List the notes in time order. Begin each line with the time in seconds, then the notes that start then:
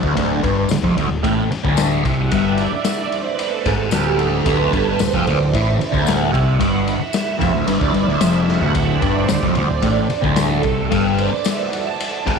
Already playing: D5
0.03 D1 D2, kick
0.15 D1 D2, kick, ride
0.43 G1 G2, kick, ride
0.69 D1 D2, snare, ride, tambourine
0.83 F1 F2, kick
0.96 D1 D2, ride
1.10 D1 D2
1.23 A1 A2, kick, ride
1.51 muted fingered electric bass stroke, muted distorted electric guitar stroke, snare, ride
1.64 D1 D2, kick
1.77 snare, ride, tambourine
2.05 C2 C3 E5, kick, ride
2.17 F#5
2.30 G1 G2 E5, kick, ride
2.45 D5
2.58 ride
2.72 E5, muted fingered electric bass stroke, muted distorted electric guitar stroke
2.84 D5, snare, ride, tambourine
3.12 C5, ride
3.27 B4
3.39 A4, ride
3.66 G#1 G#2, kick, snare, ride
3.81 G4
3.91 D1 D2, snare, ride, tambourine
4.19 A4, ride
4.46 D1 D2 B4, kick, ride
4.73 G1 G2 A4, kick, ride
4.86 B4
4.98 D1 D2 C5, snare, ride, tambourine
5.13 F1 F2, kick
5.26 D1 D2 D5, ride
5.40 D1 D2 E5
5.53 A1 A2, kick, ride
5.79 D5, muted distorted electric guitar stroke, muted fingered electric bass stroke, ride
5.92 D1 D2 E5, kick
6.07 F#5, snare, ride, tambourine
6.33 C2 C3, kick, ride
6.59 G1 G2 F#5, kick, ride
6.87 E5, ride
7.00 muted distorted electric guitar stroke, muted fingered electric bass stroke
7.13 snare, ride, tambourine
7.39 F1 F2, kick, ride
7.54 D1 D2
7.67 G1 G2 D5, ride
7.80 D1 D2, kick
7.94 G1 G2 E5, ride
8.08 D1 D2
8.21 F1 F2, snare, ride, tambourine
8.48 F#5, snare
8.61 D1 D2, floor tom
8.75 D1 D2 E5, kick, ride
8.90 D5
9.02 G1 G2, kick, ride
9.17 C5
9.28 D1 D2 D5, snare, ride, tambourine
9.43 F1 F2 C5, kick
9.54 D1 D2, ride
9.69 D1 D2 D5
9.82 A1 A2, kick, ride
10.09 muted distorted electric guitar stroke, muted fingered electric bass stroke, ride
10.22 D1 D2, kick
10.36 A4, snare, ride, tambourine
10.63 C2 C3, kick, ride
10.91 G1 G2, kick, ride
10.96 B4
11.10 C5
11.18 D5, ride
11.32 muted distorted electric guitar stroke, muted fingered electric bass stroke
11.45 E5, snare, ride, tambourine
11.60 F#5
11.73 A5, ride
12.00 ride
12.26 G#1 G#2 G5, kick, snare, ride